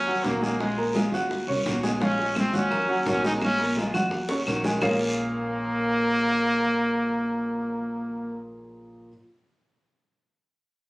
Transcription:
Already playing: upright bass D#2, trumpet C#4
0.06 grand piano F#3 F#4 F#5, nylon-string guitar A#3 C#4 F#4, high conga
0.24 upright bass A#1, nylon-string guitar D#3 A#3 C#4 F#4, trumpet A#3, high bongo, low bongo, high conga, short guiro
0.42 grand piano G#3 G#4 G#5, trumpet A#3, high conga, short guiro
0.59 nylon-string guitar F3 G#3 C#4 F4, trumpet G#3, high bongo, high conga, long guiro
0.77 grand piano A#3 A#4 A#5, high bongo, high conga
0.94 nylon-string guitar F3 G#3 C#4 F4, grand piano G#3 G#4 G#5, high bongo, high conga, short guiro
1.11 upright bass D#2, nylon-string guitar G#3 C#4 F4, grand piano F#4 F#5 F#6, high bongo, short guiro
1.30 muted nylon-string guitar stroke, high bongo, high conga, long guiro
1.47 upright bass C2, nylon-string guitar A#3 C#4 F#4, grand piano C#4 C#5 C#6, high conga
1.66 upright bass A#1, nylon-string guitar D#3 A#3 C#4 F#4, high bongo, low bongo, high conga, short guiro
1.83 grand piano G#3 G#4 G#5, high bongo, high conga, short guiro
2.00 nylon-string guitar F3 G#3 C#4 F4, grand piano F3 F4 F5, trumpet C#4, high bongo, high conga, long guiro
2.18 grand piano G#3 G#4 G#5, high conga
2.35 nylon-string guitar F3 G#3 C#4 F4, trumpet C4, high bongo, high conga, short guiro, claves
2.53 upright bass D#2, nylon-string guitar G#3 C#4 F4, trumpet C#4, grand piano F#4 F#5 F#6, high conga, short guiro
2.71 grand piano A#3 A#4 A#5, muted nylon-string guitar stroke, high bongo, high conga, low conga, long guiro, claves
2.88 grand piano F#3 F#4 F#5, nylon-string guitar A#3 C#4 F#4
3.05 upright bass A#1, nylon-string guitar D#3 A#3 C#4 F#4, trumpet C#4, high bongo, low bongo, high conga, short guiro
3.23 grand piano G#3 G#4 G#5, trumpet D#4, high conga, short guiro
3.40 nylon-string guitar F3 G#3 C#4 F4, trumpet C#4, high bongo, high conga, long guiro, claves
3.58 grand piano A#3 A#4 A#5, high bongo, high conga
3.76 nylon-string guitar F3 G#3 C#4 F4, grand piano G#3 G#4 G#5, high bongo, low conga, short guiro
3.93 upright bass D#2, nylon-string guitar G#3 C#4 F4, grand piano F#4 F#5 F#6, high bongo, low conga, short guiro, claves
4.11 muted nylon-string guitar stroke, high bongo, low conga, long guiro
4.29 nylon-string guitar A#3 C#4 F#4, grand piano C#4 C#5 C#6, high bongo
4.46 upright bass A#1, nylon-string guitar D#3 A#3 C#4 F#4, low bongo, short guiro, claves
4.64 grand piano G#3 G#4 G#5, low bongo, low conga, short guiro
4.81 upright bass A#1, nylon-string guitar A#2 F3 G#3 C#4 F4, grand piano A#3 F4 G#4 A#4 C#5 F5, trumpet A#3, low bongo, low conga, long guiro, claves

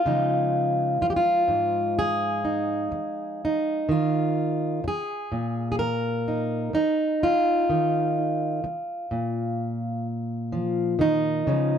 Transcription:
Already playing: steel-string acoustic guitar F4
0.06 steel-string acoustic guitar C#3 F3 G#3 D#4
1.02 steel-string acoustic guitar F4, muted steel-string acoustic guitar stroke
1.10 steel-string acoustic guitar G4
1.16 steel-string acoustic guitar F4
1.48 steel-string acoustic guitar G#2
1.99 steel-string acoustic guitar G#4
2.45 steel-string acoustic guitar D#4
2.92 muted steel-string acoustic guitar stroke
3.45 steel-string acoustic guitar D#4
3.89 steel-string acoustic guitar D#3 F4
4.84 steel-string acoustic guitar G#4, muted steel-string acoustic guitar stroke
5.32 steel-string acoustic guitar A#2
5.72 steel-string acoustic guitar G#4
5.79 steel-string acoustic guitar A#4
6.28 steel-string acoustic guitar D#4
6.73 steel-string acoustic guitar D#4, muted steel-string acoustic guitar stroke
7.23 steel-string acoustic guitar F4
7.69 steel-string acoustic guitar D#3
8.64 muted steel-string acoustic guitar stroke
9.11 steel-string acoustic guitar A#2
10.52 steel-string acoustic guitar F3
10.99 steel-string acoustic guitar D#3 D#4
11.47 steel-string acoustic guitar C#3 F3 G#3

